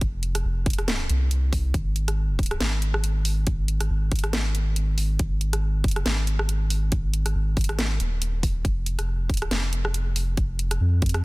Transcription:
Already playing: F1
0.01 kick, closed hi-hat
0.23 closed hi-hat
0.35 cross-stick, closed hi-hat
0.45 F1
0.66 kick, closed hi-hat
0.70 closed hi-hat
0.73 closed hi-hat
0.78 cross-stick, closed hi-hat
0.88 snare, closed hi-hat
1.09 C2, closed hi-hat
1.31 closed hi-hat
1.53 kick, open hi-hat
1.74 G#1, kick, closed hi-hat
1.96 closed hi-hat
2.08 cross-stick, closed hi-hat
2.39 kick, closed hi-hat
2.43 closed hi-hat
2.46 closed hi-hat
2.51 cross-stick, closed hi-hat
2.60 G#1, snare, closed hi-hat
2.82 closed hi-hat
2.94 cross-stick
3.04 closed hi-hat
3.25 open hi-hat
3.47 kick, closed hi-hat
3.68 closed hi-hat
3.80 cross-stick, closed hi-hat
3.90 G#1
4.12 kick, closed hi-hat
4.16 closed hi-hat
4.19 closed hi-hat
4.24 cross-stick, closed hi-hat
4.33 snare, closed hi-hat
4.55 closed hi-hat
4.76 closed hi-hat
4.98 open hi-hat
5.19 G#1, kick, closed hi-hat
5.41 closed hi-hat
5.53 cross-stick, closed hi-hat
5.79 G1
5.84 kick, closed hi-hat
5.88 closed hi-hat
5.91 closed hi-hat
5.96 cross-stick, closed hi-hat
6.06 G#1, snare, closed hi-hat
6.27 closed hi-hat
6.39 cross-stick
6.49 closed hi-hat
6.70 open hi-hat
6.92 kick, closed hi-hat
7.13 closed hi-hat
7.26 cross-stick, closed hi-hat
7.35 G#1
7.57 kick, open hi-hat
7.61 closed hi-hat
7.64 closed hi-hat
7.69 cross-stick, closed hi-hat
7.79 snare, closed hi-hat
8.00 D#1, closed hi-hat
8.22 closed hi-hat
8.43 kick, open hi-hat
8.65 F1, kick, closed hi-hat
8.86 closed hi-hat
8.99 cross-stick, closed hi-hat
9.25 E1
9.30 kick, closed hi-hat
9.34 closed hi-hat
9.37 closed hi-hat
9.42 cross-stick, closed hi-hat
9.51 F1, snare, closed hi-hat
9.73 closed hi-hat
9.85 cross-stick
9.94 closed hi-hat
10.16 open hi-hat
10.37 kick, closed hi-hat
10.59 closed hi-hat
10.71 cross-stick, closed hi-hat
10.81 F2
11.02 kick, closed hi-hat
11.06 closed hi-hat
11.09 closed hi-hat
11.14 cross-stick, closed hi-hat

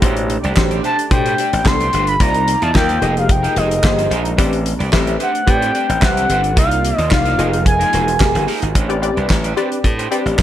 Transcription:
Already playing: G4
0.02 A1 B2 A3 D4 G4 C5, kick, closed hi-hat
0.17 muted clean electric guitar stroke, closed hi-hat
0.29 muted clean electric guitar stroke, closed hi-hat
0.43 C2 D4 G4 D5, closed hi-hat
0.56 A1 B2 D4 G4 C5, kick, snare, clap
0.71 D4 G4 D5, closed hi-hat
0.83 D4 G4 C5 A5, closed hi-hat
0.98 muted clean electric guitar stroke, closed hi-hat
1.11 A2 B2 D4 G4 C5 G5, kick, closed hi-hat
1.26 D4 G4 C5, closed hi-hat
1.38 D4 G4 D5, closed hi-hat
1.53 A1, muted clean electric guitar stroke, closed hi-hat
1.65 C2 B3 D4 G4 A4 C6, kick, snare, clap
1.81 D4 G4 D5, closed hi-hat
1.93 G1 D4 G4 C5, closed hi-hat
2.07 B5, muted clean electric guitar stroke, closed hi-hat
2.20 C2 C3 A#3 D#4 F4 A#4 D5 A#5, kick, closed hi-hat
2.34 muted clean electric guitar stroke, closed hi-hat
2.48 muted clean electric guitar stroke, closed hi-hat
2.62 E2 D#4 F4 C5 A5, closed hi-hat
2.75 D#2 A#3 D#4 F4 A#4 G5, kick, snare, clap
2.89 D#4 F4 C5, closed hi-hat
3.01 F1 F3 G#3 A#3 D#4 G4 G#4 A#4 D#5, closed hi-hat
3.14 G5, muted clean electric guitar stroke, closed hi-hat
3.18 F5
3.29 G5, muted clean electric guitar stroke, kick, closed hi-hat
3.43 D#4 G#4 A#4, closed hi-hat
3.56 F1 D#4 G#4 C5 D#5, closed hi-hat
3.71 muted clean electric guitar stroke, closed hi-hat
3.83 G1 A#3 G4 G#4 C5, muted clean electric guitar stroke, kick, snare, clap
3.98 D#4 G#4 C5, closed hi-hat
4.10 A#1 D#4 G#4 A#4, closed hi-hat
4.25 muted clean electric guitar stroke, closed hi-hat
4.37 A1 A3 C4 D4 G4 B4 C5 D5, kick, closed hi-hat
4.52 muted clean electric guitar stroke, closed hi-hat
4.65 muted clean electric guitar stroke, closed hi-hat
4.79 C2 D4 G4 D5, closed hi-hat
4.92 A1 C4 G4 B4 E5, muted clean electric guitar stroke, kick, snare, clap
5.06 D4 G4 D5, closed hi-hat
5.19 D4 G4 C5 F#5, closed hi-hat
5.34 muted clean electric guitar stroke, closed hi-hat
5.47 A2 C4 G4 B4 D5 G5, kick, closed hi-hat
5.61 D4 G4 C5, closed hi-hat
5.74 D4 G4 D5, closed hi-hat
5.89 A1, muted clean electric guitar stroke, closed hi-hat
6.02 C2 C4 G4 B4 E5 F#5, kick, snare, clap
6.16 D4 G4 D5, closed hi-hat
6.29 G1 D4 G4 C5, closed hi-hat
6.43 muted clean electric guitar stroke, closed hi-hat
6.56 C2 C3 A#3 D#4 F4 A#4 D5 F5, kick, closed hi-hat
6.71 muted clean electric guitar stroke, closed hi-hat
6.84 muted clean electric guitar stroke, closed hi-hat
6.98 D#2 D#4 F4 C5, closed hi-hat
7.11 C2 A#3 D#4 F4 D5 F5, kick, snare, clap
7.25 D#4 F4 C5, closed hi-hat
7.38 F1 F3 G#3 A#3 D#4 F4 G#4 A#4 D#5, closed hi-hat
7.53 muted clean electric guitar stroke, closed hi-hat
7.65 G#5, muted clean electric guitar stroke, kick, closed hi-hat
7.79 D#4 G#4 A#4, closed hi-hat
7.92 E1 D#4 G#4 C5, closed hi-hat
8.07 muted clean electric guitar stroke, closed hi-hat
8.20 F1 A#3 G4 G#4 A#4, muted clean electric guitar stroke, kick, snare, clap
8.34 G1 D#4 G#4 C5, closed hi-hat
8.47 D#4 G#4 A#4, open hi-hat
8.62 G#1, muted clean electric guitar stroke, closed hi-hat
8.74 A1 D4 G4 C5, kick, closed hi-hat
8.89 C4 G4 B4 D5, muted clean electric guitar stroke, closed hi-hat
9.02 C4 G4 B4 D5, muted clean electric guitar stroke, closed hi-hat
9.16 C2 D4 G4 D5, closed hi-hat
9.30 A1, kick, snare, clap
9.44 D4 G4 D5, closed hi-hat
9.56 C4 D4 G4 B4 C5 D5, closed hi-hat
9.71 muted clean electric guitar stroke, closed hi-hat
9.84 A2, muted clean electric guitar stroke, kick, closed hi-hat
9.98 D4 G4 C5, closed hi-hat
10.11 C4 D4 G4 B4 D5, closed hi-hat
10.25 A1, muted clean electric guitar stroke, closed hi-hat
10.38 C2, muted clean electric guitar stroke, kick, clap

